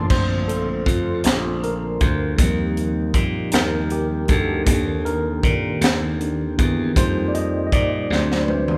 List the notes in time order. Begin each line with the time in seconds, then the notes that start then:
Already playing: A#3 D4 F4 C5 A5
0.10 A#1 D3 A3 C4 D4 F4 C5, kick, crash
0.48 A4, closed hi-hat
0.86 F2 F4, kick, closed hi-hat
1.24 A#1, snare, closed hi-hat
1.64 A#4, closed hi-hat
2.01 D2, kick, closed hi-hat
2.38 D#2 F3 G3 C4 D#4 G4, kick, closed hi-hat
2.77 closed hi-hat
3.14 A#2, kick, closed hi-hat
3.52 D#2 A#4, snare, closed hi-hat
3.90 G4, closed hi-hat
4.28 D2 A4, kick, closed hi-hat
4.67 D#2 D#3 A#3 C4 D4, kick, closed hi-hat
5.05 A#4, closed hi-hat
5.43 A#2, kick, closed hi-hat
5.81 D#2, snare, closed hi-hat
6.20 D#3 A#3 D4, closed hi-hat
6.59 E2, kick, closed hi-hat
6.95 F2 F3 G3 A#3 D#4 C5, kick, closed hi-hat
7.28 D5
7.35 D#5, closed hi-hat
7.67 D#5
7.72 A#2 D5, kick, closed hi-hat
8.10 D2 F#3 A3 C4 D4 C5, snare
8.32 snare
8.45 B4, high tom
8.50 C5
8.68 mid tom